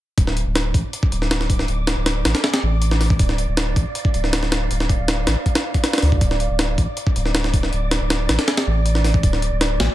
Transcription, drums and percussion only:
0.18 kick, open hi-hat
0.27 snare
0.37 open hi-hat
0.55 snare, open hi-hat
0.74 kick, open hi-hat
0.93 open hi-hat
1.03 kick
1.12 open hi-hat
1.22 snare
1.31 snare, open hi-hat
1.41 snare
1.50 kick, open hi-hat
1.59 snare
1.68 open hi-hat
1.87 snare, open hi-hat
2.06 snare, open hi-hat
2.25 snare, open hi-hat
2.35 snare, open hi-hat
2.44 snare, open hi-hat
2.54 snare, open hi-hat
2.82 open hi-hat
2.91 snare
3.01 snare, open hi-hat
3.10 kick
3.19 kick, open hi-hat
3.29 snare
3.38 open hi-hat
3.57 snare, open hi-hat
3.76 kick, open hi-hat
3.95 open hi-hat
4.05 kick
4.14 open hi-hat
4.24 snare
4.33 snare, open hi-hat
4.43 snare
4.52 snare, open hi-hat
4.71 open hi-hat
4.80 snare
4.89 kick, open hi-hat
5.08 snare, open hi-hat
5.27 snare, open hi-hat
5.46 kick, open hi-hat
5.55 snare, open hi-hat
5.74 kick, open hi-hat
5.84 snare, open hi-hat
5.93 snare, open hi-hat
5.98 snare, open hi-hat
6.02 snare, open hi-hat
6.12 kick
6.21 kick, open hi-hat
6.31 snare
6.40 open hi-hat
6.59 snare, open hi-hat
6.78 kick, open hi-hat
6.97 open hi-hat
7.07 kick
7.16 open hi-hat
7.26 snare
7.35 snare, open hi-hat
7.44 snare
7.54 kick, open hi-hat
7.63 snare
7.73 open hi-hat
7.91 snare, open hi-hat
8.10 snare, open hi-hat
8.29 snare, open hi-hat
8.39 snare, open hi-hat
8.48 snare, open hi-hat
8.57 snare, open hi-hat
8.86 open hi-hat
8.95 snare
9.04 snare, open hi-hat
9.14 kick
9.23 kick, open hi-hat
9.33 snare
9.42 open hi-hat
9.61 snare, open hi-hat
9.80 snare, open hi-hat

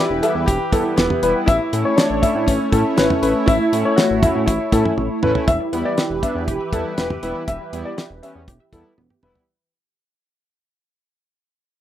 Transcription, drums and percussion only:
0.23 closed hi-hat, cowbell
0.48 kick, closed hi-hat
0.72 kick, closed hi-hat
0.98 snare, closed hi-hat
1.10 mid tom
1.23 closed hi-hat
1.48 kick, closed hi-hat
1.73 closed hi-hat
1.98 snare, closed hi-hat
2.23 kick, closed hi-hat
2.48 kick, closed hi-hat
2.72 kick, closed hi-hat
2.98 snare, closed hi-hat
3.10 mid tom
3.23 closed hi-hat
3.48 kick, closed hi-hat
3.73 closed hi-hat
3.98 snare, closed hi-hat
4.23 kick, closed hi-hat, mid tom
4.48 kick, closed hi-hat
4.72 kick, closed hi-hat
4.85 mid tom
4.98 high tom
5.23 mid tom
5.35 floor tom
5.48 kick, closed hi-hat
5.73 closed hi-hat
5.98 snare, closed hi-hat
6.23 kick, closed hi-hat
6.48 kick, closed hi-hat
6.73 kick, closed hi-hat
6.98 snare, closed hi-hat
7.10 mid tom
7.23 closed hi-hat
7.48 kick, closed hi-hat
7.73 closed hi-hat
7.98 snare, closed hi-hat
8.23 closed hi-hat
8.48 kick, closed hi-hat
8.73 kick, closed hi-hat
8.98 high tom
9.10 mid tom
9.23 mid tom
9.35 floor tom

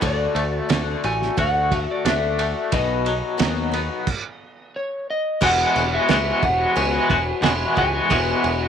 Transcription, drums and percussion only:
0.02 kick, ride
0.36 ride
0.70 snare, ride
1.04 ride
1.22 snare
1.38 kick, ride
1.71 kick, ride
2.06 snare, ride
2.39 ride
2.72 kick, ride
3.06 ride
3.39 snare, ride
3.73 ride
4.07 kick, crash
5.42 kick, crash
5.76 snare, crash
6.09 snare, crash
6.43 kick, crash
6.76 crash
7.10 kick, crash
7.43 snare, crash
7.77 kick, crash
8.11 kick, crash
8.44 crash

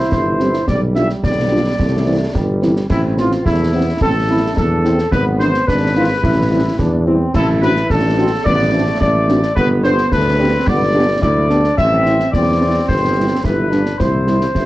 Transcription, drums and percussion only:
0.12 concert bass drum, snare
0.40 snare
0.54 snare
0.68 concert bass drum, snare
0.96 snare
1.10 snare
1.24 concert bass drum, snare
1.79 concert bass drum, snare
2.35 concert bass drum, snare
2.63 snare
2.76 snare
2.90 concert bass drum, snare, crash
3.18 snare
3.32 snare
3.46 concert bass drum, snare
4.01 concert bass drum, snare
4.57 concert bass drum, snare
4.85 snare
4.99 snare
5.12 concert bass drum, snare
5.40 snare
5.54 snare
5.68 concert bass drum, snare
6.24 concert bass drum, snare
6.79 concert bass drum, snare
7.34 concert bass drum, snare, crash
7.62 snare
7.76 snare
7.90 concert bass drum, snare
8.46 concert bass drum, snare
9.01 concert bass drum, snare
9.29 snare
9.43 snare
9.57 concert bass drum, snare
9.84 snare
9.98 snare
10.12 concert bass drum, snare
10.67 concert bass drum, snare
11.22 concert bass drum, snare
11.50 snare
11.64 snare
11.78 concert bass drum, snare, crash
12.06 snare
12.20 snare
12.34 concert bass drum, snare
12.89 concert bass drum, snare
13.44 concert bass drum, snare
13.72 snare
13.86 snare
14.00 concert bass drum, snare
14.27 snare
14.41 snare
14.55 concert bass drum, snare

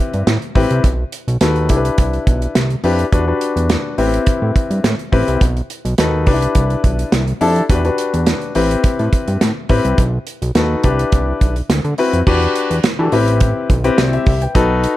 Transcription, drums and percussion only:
0.14 closed hi-hat
0.27 snare, closed hi-hat
0.42 closed hi-hat
0.55 kick, open hi-hat
0.71 closed hi-hat
0.84 kick, closed hi-hat
1.12 closed hi-hat
1.28 closed hi-hat
1.41 snare, closed hi-hat
1.56 closed hi-hat
1.69 kick, closed hi-hat
1.85 closed hi-hat
1.98 kick, closed hi-hat
2.13 closed hi-hat
2.27 kick, closed hi-hat
2.42 closed hi-hat
2.55 snare, closed hi-hat
2.70 closed hi-hat
2.84 open hi-hat
2.99 closed hi-hat
3.12 kick, closed hi-hat
3.41 closed hi-hat
3.57 closed hi-hat
3.70 snare, closed hi-hat
3.98 open hi-hat
4.14 closed hi-hat
4.26 kick, closed hi-hat
4.56 kick, closed hi-hat
4.71 closed hi-hat
4.84 snare, closed hi-hat
4.99 closed hi-hat
5.13 kick, open hi-hat
5.28 closed hi-hat
5.41 kick, closed hi-hat
5.57 closed hi-hat
5.70 closed hi-hat
5.85 closed hi-hat
5.98 snare, closed hi-hat
6.27 kick, open hi-hat
6.42 closed hi-hat
6.55 kick, closed hi-hat
6.70 closed hi-hat
6.84 kick, closed hi-hat
6.99 closed hi-hat
7.12 snare, closed hi-hat
7.28 closed hi-hat
7.41 open hi-hat
7.56 closed hi-hat
7.70 kick, closed hi-hat
7.85 closed hi-hat
7.98 closed hi-hat
8.14 closed hi-hat
8.27 snare, closed hi-hat
8.41 closed hi-hat
8.55 open hi-hat
8.71 closed hi-hat
8.84 kick, closed hi-hat
8.99 closed hi-hat
9.13 kick, closed hi-hat
9.28 closed hi-hat
9.41 snare, closed hi-hat
9.69 kick, open hi-hat
9.85 closed hi-hat
9.98 kick, closed hi-hat
10.27 closed hi-hat
10.42 closed hi-hat
10.55 snare, closed hi-hat
10.84 kick, closed hi-hat
10.99 closed hi-hat
11.12 kick, closed hi-hat
11.41 kick, closed hi-hat
11.56 closed hi-hat
11.70 snare, closed hi-hat
11.85 closed hi-hat
11.98 open hi-hat
12.13 closed hi-hat
12.27 kick, crash
12.42 closed hi-hat
12.56 closed hi-hat
12.71 closed hi-hat
12.84 snare, closed hi-hat
13.12 open hi-hat
13.28 closed hi-hat
13.40 kick, closed hi-hat
13.70 kick, closed hi-hat
13.84 closed hi-hat
13.98 snare, closed hi-hat
14.13 closed hi-hat
14.26 kick, open hi-hat
14.42 closed hi-hat
14.55 kick, closed hi-hat
14.84 closed hi-hat

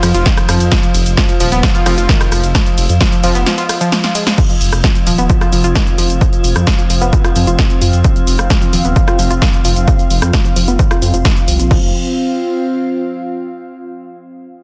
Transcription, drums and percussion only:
0.03 cross-stick, open hi-hat, ride, shaker
0.15 closed hi-hat, ride, shaker
0.26 kick, snare, closed hi-hat, ride, shaker
0.37 cross-stick, closed hi-hat, ride, shaker
0.49 cross-stick, open hi-hat, ride, shaker
0.60 closed hi-hat, ride, shaker
0.72 kick, snare, closed hi-hat, ride, shaker
0.83 closed hi-hat, ride, shaker
0.94 open hi-hat, ride, shaker
1.06 closed hi-hat, ride, shaker
1.17 kick, snare, closed hi-hat, ride, shaker
1.29 closed hi-hat, ride, shaker
1.40 open hi-hat, ride, shaker
1.52 closed hi-hat, ride, shaker
1.63 kick, snare, closed hi-hat, ride, shaker
1.75 closed hi-hat, ride, shaker
1.86 cross-stick, open hi-hat, ride, shaker
1.98 closed hi-hat, ride, shaker
2.09 kick, snare, closed hi-hat, ride, shaker
2.21 cross-stick, closed hi-hat, ride, shaker
2.32 cross-stick, open hi-hat, ride, shaker
2.44 closed hi-hat, ride, shaker
2.55 kick, snare, closed hi-hat, ride, shaker
2.66 closed hi-hat, ride, shaker
2.78 open hi-hat, ride, shaker
2.89 closed hi-hat, ride, shaker
3.01 kick, snare, closed hi-hat, ride, shaker
3.12 closed hi-hat, ride, shaker
3.24 open hi-hat, ride, shaker
3.35 closed hi-hat, ride, shaker
3.46 snare, closed hi-hat, ride, shaker
3.58 closed hi-hat, ride, shaker
3.69 cross-stick, open hi-hat, ride, shaker
3.81 closed hi-hat, ride, shaker
3.92 snare, closed hi-hat, ride, shaker
4.04 snare, closed hi-hat, ride, shaker
4.15 open hi-hat, ride, shaker
4.27 snare, closed hi-hat, ride, shaker
4.38 kick, closed hi-hat, crash, shaker
4.50 closed hi-hat, shaker
4.61 open hi-hat, shaker
4.73 cross-stick, closed hi-hat, shaker
4.84 kick, snare, closed hi-hat, shaker
4.95 closed hi-hat, shaker
5.07 open hi-hat, shaker
5.18 closed hi-hat, shaker
5.30 kick, closed hi-hat, shaker
5.41 cross-stick, closed hi-hat, shaker
5.53 open hi-hat, shaker
5.64 closed hi-hat, shaker
5.75 kick, snare, closed hi-hat, shaker
5.87 closed hi-hat, shaker
5.98 open hi-hat, shaker
6.10 closed hi-hat, shaker
6.21 kick, closed hi-hat, shaker
6.33 closed hi-hat, shaker
6.44 open hi-hat, shaker
6.56 cross-stick, closed hi-hat, shaker
6.67 kick, snare, closed hi-hat, shaker
6.79 closed hi-hat, shaker
6.90 open hi-hat, shaker
7.02 closed hi-hat, shaker
7.13 kick, closed hi-hat, shaker
7.24 cross-stick, closed hi-hat, shaker
7.36 open hi-hat, shaker
7.47 closed hi-hat, shaker
7.59 kick, snare, closed hi-hat, shaker
7.70 closed hi-hat, shaker
7.82 open hi-hat, shaker
7.93 closed hi-hat, shaker
8.04 kick, closed hi-hat, shaker
8.16 closed hi-hat, shaker
8.27 open hi-hat, shaker
8.39 cross-stick, closed hi-hat, shaker
8.50 kick, snare, closed hi-hat, shaker
8.62 closed hi-hat, shaker
8.73 open hi-hat, shaker
8.85 closed hi-hat, shaker
8.96 kick, closed hi-hat, shaker
9.08 cross-stick, closed hi-hat, shaker
9.19 open hi-hat, shaker
9.31 closed hi-hat, shaker
9.42 kick, snare, closed hi-hat, shaker
9.53 closed hi-hat, shaker
9.65 open hi-hat, shaker
9.76 closed hi-hat, shaker
9.88 kick, closed hi-hat, shaker
9.99 closed hi-hat, shaker
10.11 open hi-hat, shaker
10.22 cross-stick, closed hi-hat, shaker
10.33 kick, snare, closed hi-hat, shaker
10.45 closed hi-hat, shaker
10.56 open hi-hat, shaker
10.68 closed hi-hat, shaker
10.79 kick, closed hi-hat, shaker
10.91 cross-stick, closed hi-hat, shaker
11.02 open hi-hat, shaker
11.14 closed hi-hat, shaker
11.25 kick, snare, closed hi-hat, shaker
11.37 closed hi-hat, shaker
11.48 open hi-hat, shaker
11.60 closed hi-hat, shaker
11.71 kick, crash

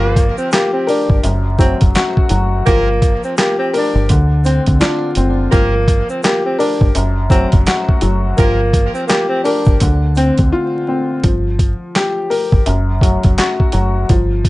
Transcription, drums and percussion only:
0.16 kick, closed hi-hat, shaker
0.38 shaker
0.52 snare, clap, closed hi-hat, shaker
0.88 open hi-hat, shaker
1.10 kick
1.24 closed hi-hat, shaker
1.59 kick, closed hi-hat, shaker
1.81 kick, closed hi-hat
1.95 snare, clap, closed hi-hat, shaker
2.17 kick
2.29 closed hi-hat, shaker
2.66 kick, closed hi-hat, shaker
3.02 kick, closed hi-hat, shaker
3.23 shaker
3.37 snare, clap, closed hi-hat, shaker
3.74 open hi-hat, shaker
4.09 kick, closed hi-hat, shaker
4.44 closed hi-hat, shaker
4.66 kick, closed hi-hat
4.81 snare, clap, closed hi-hat, shaker
5.15 closed hi-hat, shaker
5.52 kick, closed hi-hat, shaker
5.88 kick, closed hi-hat, shaker
6.09 shaker
6.23 snare, clap, closed hi-hat, shaker
6.60 open hi-hat, shaker
6.81 kick
6.95 closed hi-hat, shaker
7.30 kick, closed hi-hat, shaker
7.52 kick, closed hi-hat
7.67 snare, clap, closed hi-hat, shaker
7.89 kick
8.01 closed hi-hat, shaker
8.38 kick, closed hi-hat, shaker
8.73 kick, closed hi-hat, shaker
8.95 shaker
9.08 snare, clap, closed hi-hat, shaker
9.45 open hi-hat, shaker
9.65 kick, shaker
9.80 kick, closed hi-hat, shaker
10.15 closed hi-hat, shaker
10.38 kick, closed hi-hat
11.24 kick, closed hi-hat
11.59 kick, closed hi-hat
11.95 snare, clap, closed hi-hat
12.31 open hi-hat
12.52 kick
12.66 closed hi-hat
13.01 kick, closed hi-hat
13.23 kick, closed hi-hat
13.38 snare, clap, closed hi-hat
13.60 kick
13.72 closed hi-hat
14.09 kick, closed hi-hat
14.45 kick, closed hi-hat

